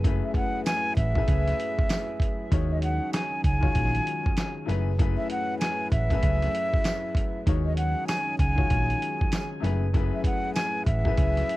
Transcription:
Already playing: fingered electric bass F#1, analog synth pad F#3 A3 E4 G#4 B4
0.04 upright piano F#2 A3 E4 G#4 B4, kick, closed hi-hat
0.24 flute E5
0.34 flute F#5, kick, closed hi-hat
0.65 flute G#5, snare, closed hi-hat, tambourine
0.96 fingered electric bass A1, flute E5, kick, closed hi-hat
1.15 upright piano F#2 A3 E4 G#4 B4, kick
1.28 fingered electric bass C#2, kick, closed hi-hat
1.47 snare, closed hi-hat
1.60 closed hi-hat
1.79 kick
1.90 snare, closed hi-hat, tambourine
2.20 kick, closed hi-hat
2.50 fingered electric bass D#2, analog synth pad D#3 F#3 C#4 D#4, upright piano D#3 G#3 D#4 F#4 C#5, kick, closed hi-hat
2.71 flute D#5
2.82 flute F#5, closed hi-hat
3.13 flute G#5, snare, closed hi-hat, tambourine
3.44 fingered electric bass C#2, flute G#5, kick, closed hi-hat
3.61 upright piano D#3 G#3 F4 F#4 C#5, kick
3.75 fingered electric bass A#1, kick, closed hi-hat
3.95 closed hi-hat
4.07 closed hi-hat
4.26 kick
4.37 snare, closed hi-hat, tambourine
4.65 fingered electric bass F#1, upright piano F#2 A3 E4 G#4 B4, analog synth pad F#3 A3 E4 B4, snare, closed hi-hat
4.98 upright piano F#2 A3 E4 G#4 B4, kick, closed hi-hat
5.17 flute E5
5.30 flute F#5, closed hi-hat
5.59 flute G#5, snare, closed hi-hat, tambourine
5.91 fingered electric bass A1, flute E5, kick, closed hi-hat
6.10 upright piano F#2 A3 E4 G#4 B4, kick, closed hi-hat
6.23 fingered electric bass C#2, kick, closed hi-hat
6.42 snare, closed hi-hat
6.55 closed hi-hat
6.74 kick
6.84 snare, closed hi-hat, tambourine
7.15 kick, closed hi-hat
7.46 fingered electric bass D#2, upright piano D#3 G#3 D#4 F#4 C#5, analog synth pad D#3 F#3 C#4 D#4 G#4, kick, closed hi-hat
7.66 flute D#5
7.77 flute F#5, closed hi-hat
8.07 flute G#5, snare, closed hi-hat, tambourine
8.38 fingered electric bass C#2, flute G#5, kick, closed hi-hat
8.56 upright piano D#3 G#3 F4 F#4 C#5, kick
8.70 fingered electric bass A#1, kick, closed hi-hat
8.90 closed hi-hat
9.02 closed hi-hat
9.21 kick
9.32 snare, closed hi-hat, tambourine
9.60 fingered electric bass F#1, upright piano F#2 A3 E4 G#4 B4, analog synth pad F#3 A3 E4 B4, snare, closed hi-hat
9.93 upright piano F#2 A3 E4 G#4 B4, kick, closed hi-hat
10.14 flute E5
10.24 flute F#5, kick, closed hi-hat
10.55 flute G#5, snare, closed hi-hat, tambourine
10.86 fingered electric bass A1, flute E5, kick, closed hi-hat
11.05 upright piano F#2 A3 E4 G#4 B4, kick
11.18 fingered electric bass C#2, kick, closed hi-hat
11.37 snare, closed hi-hat
11.50 closed hi-hat

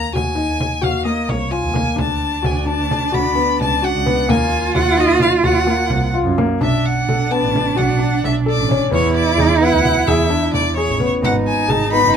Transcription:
Already playing: violin A#5
0.13 double bass D#2, felt piano F#4, violin G#5, frame drum
0.35 felt piano D#4
0.48 double bass D#2
0.60 frame drum
0.81 double bass D#2, felt piano F#4, violin F5, frame drum
1.05 felt piano A#3, violin D#5
1.28 double bass C2, violin C#5, frame drum
1.51 felt piano F4, violin G#5
1.62 double bass D#2
1.74 felt piano A#3, frame drum
1.96 double bass D2, felt piano D4, cello D4, frame drum
2.01 violin A5
2.42 double bass D2, felt piano F#4, violin G#5, frame drum
2.66 felt piano D4, violin A5
2.78 double bass D2
2.91 frame drum
3.12 double bass D2, felt piano F#4, violin B5, frame drum
3.35 felt piano B3
3.59 double bass C#2, violin A5, frame drum
3.82 felt piano F#4, violin F#5
3.95 double bass C#2
4.06 felt piano B3, frame drum
4.27 double bass D#2, felt piano A#3, cello F4, violin G#5, frame drum
4.74 double bass D#2, felt piano F#4, violin F#5, frame drum
4.97 felt piano D#4, violin D#5
5.09 double bass D#2
5.20 violin F5, frame drum
5.44 double bass D#2, felt piano F#4, violin F#5, frame drum
5.67 felt piano A#3
5.89 double bass C2, frame drum
6.14 felt piano F4
6.24 double bass F#2
6.38 felt piano A#3, frame drum
6.60 double bass B1, cello D4, felt piano D4, violin E5, frame drum
6.86 violin F#5
7.07 double bass B1, felt piano A4, frame drum
7.31 felt piano B3, violin A5
7.41 double bass A1
7.55 frame drum
7.75 double bass B1, felt piano F#4, violin F#5, frame drum
7.99 felt piano D4
8.21 double bass B1, violin E5, frame drum
8.46 felt piano A4, violin D5
8.56 double bass A1
8.69 felt piano C#4, frame drum
8.91 double bass E2, felt piano B3, cello E4, violin C#5, frame drum
9.16 violin D5
9.37 double bass E2, felt piano G#4, frame drum
9.61 felt piano B3, violin F#5
9.71 double bass D2
9.85 frame drum
10.06 double bass E2, felt piano G#4, violin E5, frame drum
10.30 felt piano D4
10.53 double bass E2, violin D5, frame drum
10.76 felt piano G#4, violin C#5, frame drum
10.87 double bass A1
11.00 felt piano B3, frame drum
11.22 double bass G#1, felt piano B3, cello D#4, violin F#5, frame drum
11.46 violin G#5, frame drum
11.68 double bass G#1, felt piano G#4, violin A5, frame drum
11.93 felt piano B3, violin B5
12.03 double bass F#1

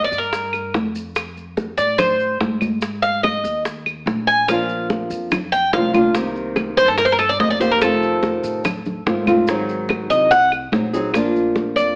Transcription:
0.04 cuban tres D5
0.11 upright bass G2, high bongo, high conga, maracas
0.18 cuban tres A#4
0.33 high bongo, high conga, maracas
0.53 high bongo, high conga, claves, maracas
0.74 upright bass F2, high bongo, low bongo, high conga, maracas
0.95 high conga, maracas
1.16 high bongo, high conga, claves, maracas
1.36 high conga, maracas
1.57 high bongo, high conga, maracas
1.77 upright bass A2, cuban tres D5, high conga, maracas
1.98 cuban tres C5, high bongo, high conga, low conga, claves, maracas
2.20 high conga, maracas
2.40 upright bass G#2, high bongo, low bongo, high conga, maracas
2.61 high conga, claves, maracas
2.81 high bongo, high conga, maracas
3.02 cuban tres F5, high bongo, high conga, maracas
3.23 cuban tres D#5, high bongo, high conga, claves, maracas
3.44 upright bass D#2, high bongo, high conga, maracas
3.65 high bongo, high conga, maracas
3.86 high bongo, high conga, claves, maracas
4.06 upright bass A#1, high bongo, low bongo, high conga, maracas
4.27 cuban tres G#5, high conga, maracas
4.48 nylon-string guitar F3 A#3 D4 F4, cuban tres F5, high bongo, high conga, claves, maracas
4.69 high conga, maracas
4.90 high bongo, high conga, maracas
5.10 upright bass F2, high conga, maracas
5.31 muted nylon-string guitar stroke, high bongo, high conga, low conga, claves, maracas
5.52 cuban tres G5, high conga, maracas
5.73 upright bass C2, nylon-string guitar F3 A#3 D4 F4, cuban tres F5, high bongo, low bongo, high conga, maracas
5.93 nylon-string guitar A#3 D4 F4, high conga, claves, maracas
6.14 nylon-string guitar C3 D#3 A#3 C4 G4, high bongo, high conga, maracas
6.35 high bongo, high conga, maracas
6.56 high bongo, high conga, claves, maracas
6.77 upright bass G2, cuban tres C5, high bongo, high conga, maracas
6.88 cuban tres A4
6.98 cuban tres A#4, muted nylon-string guitar stroke, high bongo, high conga, maracas
7.05 cuban tres C5
7.12 cuban tres A#4
7.19 cuban tres A4, high bongo, high conga, claves, maracas
7.29 cuban tres D5
7.39 upright bass F2, nylon-string guitar D#3 A#3 C4 G4, cuban tres D#5, high bongo, low bongo, high conga, maracas
7.50 cuban tres D5
7.60 nylon-string guitar D#3 A#3 C4 G4, cuban tres C5, high conga, maracas
7.71 cuban tres A#4
7.81 nylon-string guitar C3 D#3 A3 C4 F4, cuban tres A4, high bongo, high conga, claves, maracas
8.03 high conga, maracas
8.23 high bongo, high conga, maracas
8.43 upright bass A2, high conga, maracas
8.64 muted nylon-string guitar stroke, high bongo, high conga, low conga, claves, maracas
8.85 high conga, low conga, maracas
9.06 upright bass G#2, nylon-string guitar D#3 A3 C4 F4, high bongo, low bongo, high conga, maracas
9.27 nylon-string guitar D#3 A3 C4 F4, high conga, claves, maracas
9.47 nylon-string guitar D#3 F#3 C4 D#4 G#4, high bongo, high conga, maracas
9.69 high bongo, high conga, maracas
9.89 high bongo, high conga, claves, maracas
10.10 upright bass C2, cuban tres D#5, high bongo, high conga, maracas
10.31 cuban tres F#5, muted nylon-string guitar stroke, high bongo, high conga, maracas
10.52 high bongo, high conga, claves, maracas
10.72 upright bass A#1, nylon-string guitar F#3 C4 D#4 G#4, high bongo, low bongo, high conga, maracas
10.93 nylon-string guitar F#3 C4 D#4 G#4, high conga, maracas
11.14 nylon-string guitar F3 A#3 D4 F4, high bongo, high conga, claves, maracas
11.35 high conga, maracas
11.56 high bongo, high conga, maracas
11.76 upright bass F2, cuban tres D5, high conga, maracas

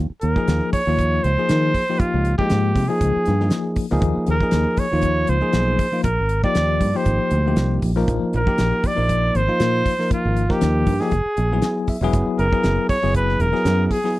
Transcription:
0.10 muted fretless electric bass stroke
0.21 fretless electric bass D#2, trumpet A#4, closed hi-hat
0.36 tine electric piano F3 A#3 D#4 G#4, kick
0.48 fretless electric bass D#2, snare, closed hi-hat
0.73 trumpet C#5, muted fretless electric bass stroke, kick, open hi-hat
0.87 fretless electric bass D#2, tine electric piano F3 A#3 D#4 F4
0.99 kick, closed hi-hat
1.24 fretless electric bass C#2, trumpet C5, closed hi-hat
1.38 tine electric piano F3 A#3 D#4 G#4
1.49 fretless electric bass D#3, snare, closed hi-hat
1.74 kick, open hi-hat
1.89 tine electric piano F3 A#3 D#4 G4
1.99 trumpet F4, kick, closed hi-hat
2.14 fretless electric bass C#2
2.25 closed hi-hat
2.38 tine electric piano F3 G#3 A#3 D#4, trumpet G4, kick
2.50 fretless electric bass G#2, snare, closed hi-hat
2.76 fretless electric bass C3, kick, snare, open hi-hat
2.88 tine electric piano F3 A#3 D#4 G#4, trumpet G#4
3.01 fretless electric bass C#2, kick, closed hi-hat
3.16 muted fretless electric bass stroke
3.26 fretless electric bass G2, snare, closed hi-hat
3.40 tine electric piano F3 A#3 D#4 G#4, snare
3.50 snare, closed hi-hat
3.76 kick, open hi-hat
3.90 fretless electric bass C#2, tine electric piano F3 A#3 D#4 G#4, snare
4.02 fretless electric bass D#2, kick, closed hi-hat
4.17 muted fretless electric bass stroke
4.27 fretless electric bass D#2, closed hi-hat
4.31 trumpet A#4
4.40 tine electric piano F3 A#3 D#4 G#4, kick
4.51 fretless electric bass D#2, snare, closed hi-hat
4.77 trumpet C#5, muted fretless electric bass stroke, kick, open hi-hat
4.91 fretless electric bass D#2, tine electric piano F3 A#3 D#4 F4
5.02 kick, closed hi-hat
5.27 fretless electric bass C#2, trumpet C5, closed hi-hat
5.41 tine electric piano F3 A#3 D#4 G#4
5.53 fretless electric bass B1, snare, closed hi-hat
5.79 kick, open hi-hat
5.92 tine electric piano F3 A#3 D#4 F4
6.04 fretless electric bass A#1, trumpet A#4, kick, closed hi-hat
6.19 fretless electric bass G#1
6.29 closed hi-hat
6.43 tine electric piano F3 A#3 D#4 G4, trumpet D5, kick
6.55 fretless electric bass D#2, snare, closed hi-hat
6.81 fretless electric bass G2, kick, open hi-hat
6.94 tine electric piano F3 A#3 D#4 G4, trumpet C5
7.06 fretless electric bass G#1, kick, closed hi-hat
7.31 fretless electric bass D2, closed hi-hat
7.46 tine electric piano F3 A#3 D#4 G4
7.56 fretless electric bass C2, snare, closed hi-hat
7.82 fretless electric bass A#1, kick, open hi-hat
7.96 tine electric piano F3 A#3 D#4 A#4, snare
8.08 fretless electric bass A#1, kick, closed hi-hat
8.23 muted fretless electric bass stroke
8.33 fretless electric bass A#1, trumpet A#4, closed hi-hat
8.47 tine electric piano F3 A#3 D#4 G4, kick
8.58 fretless electric bass A#1, snare, closed hi-hat
8.83 trumpet D5, muted fretless electric bass stroke, kick, open hi-hat
8.95 fretless electric bass A#1, tine electric piano F3 A#3 D#4 A#4
9.09 kick, closed hi-hat
9.35 fretless electric bass G#1, trumpet C5, closed hi-hat
9.47 tine electric piano F3 A#3 D#4 F4
9.60 fretless electric bass A#2, snare, closed hi-hat
9.86 kick, open hi-hat
9.99 tine electric piano F3 A#3 D#4 A#4, snare
10.11 trumpet F4, kick, closed hi-hat
10.25 fretless electric bass G#1
10.37 closed hi-hat
10.49 tine electric piano F3 A#3 D#4 A#4, trumpet G4, kick, snare
10.61 fretless electric bass D#2, snare, closed hi-hat
10.86 fretless electric bass G2, kick, open hi-hat
11.00 tine electric piano F3 A#3 D#4 G4, trumpet G#4, snare
11.11 fretless electric bass F#1, kick, closed hi-hat
11.37 fretless electric bass A#1, closed hi-hat
11.52 tine electric piano F#3 B3 E4 G#4
11.62 tine electric piano G#5, snare, closed hi-hat
11.87 tine electric piano E5, kick, open hi-hat
12.01 fretless electric bass E1, tine electric piano F#3 B3 E4 G#4
12.13 fretless electric bass F#1, kick, closed hi-hat
12.27 muted fretless electric bass stroke
12.39 fretless electric bass F#1, trumpet A#4, closed hi-hat
12.52 tine electric piano F#3 B3 E4 G#4, kick
12.63 fretless electric bass F#1, snare, closed hi-hat
12.89 trumpet C#5, muted fretless electric bass stroke, kick, open hi-hat
13.02 fretless electric bass F#1, tine electric piano F#3 B3 E4 G#4
13.14 trumpet B4, kick, closed hi-hat
13.29 snare
13.39 fretless electric bass E1, trumpet A#4, closed hi-hat
13.52 tine electric piano F#3 B3 E4 G#4, snare
13.65 fretless electric bass F#2, snare, closed hi-hat
13.87 trumpet A#4
13.91 trumpet G#4, kick, open hi-hat
14.04 tine electric piano F#3 B3 E4 G#4, snare

